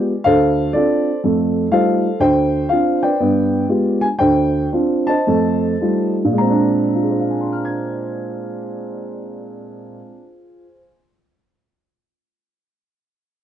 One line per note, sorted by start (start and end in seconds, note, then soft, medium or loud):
0.00 0.11 G#3 soft
0.00 0.11 B3 soft
0.00 0.11 F4 soft
0.00 0.12 G4 soft
0.00 0.22 G#4 medium
0.00 0.22 B4 soft
0.00 0.21 D5 soft
0.24 0.68 D2 medium
0.24 0.74 A4 medium
0.24 1.19 C5 medium
0.24 0.70 F5 loud
0.73 1.08 C4 soft
0.73 1.08 D4 soft
0.73 1.09 F4 soft
0.73 1.20 A4 medium
0.73 1.19 D5 medium
1.24 1.66 F2 medium
1.24 1.66 A3 medium
1.71 2.06 G3 soft
1.71 2.06 A3 soft
1.71 2.06 D#4 soft
1.71 2.06 F4 soft
1.71 2.18 A4 medium
1.71 2.18 C5 medium
1.71 2.22 F5 medium
2.20 2.63 D2 medium
2.20 3.15 C5 medium
2.20 2.71 G5 medium
2.69 3.05 C4 soft
2.69 3.05 D4 soft
2.69 3.05 F4 medium
2.69 3.00 F5 medium
3.03 3.99 B4 medium
3.03 3.99 D5 medium
3.03 3.65 G5 medium
3.20 3.63 G2 medium
3.20 3.63 B3 medium
3.69 4.04 G#3 soft
3.69 4.04 B3 soft
3.69 4.04 F4 soft
3.69 4.05 G4 soft
4.01 4.06 G#5 medium
4.19 4.65 D2 medium
4.19 5.08 C5 medium
4.19 4.68 G5 medium
4.72 5.09 C4 soft
4.72 5.09 D4 soft
4.72 5.10 F4 soft
5.07 6.15 C5 medium
5.07 6.14 D#5 medium
5.07 6.13 A5 medium
5.27 5.74 F2 medium
5.27 5.74 A3 medium
5.80 6.20 G3 soft
5.80 6.20 A3 soft
5.80 6.20 D#4 soft
5.80 6.20 F4 soft
6.24 9.97 A#2 medium
6.33 10.05 G#3 medium
6.38 10.14 C4 medium
6.38 10.07 A#5 medium
6.50 10.22 D4 medium
6.95 10.63 F4 soft
7.03 10.71 G#4 soft
7.11 10.79 C5 soft
7.20 10.89 F5 soft
7.30 10.99 G#5 soft
7.41 11.10 C6 soft
7.52 11.21 F6 soft
7.65 11.33 G#6 soft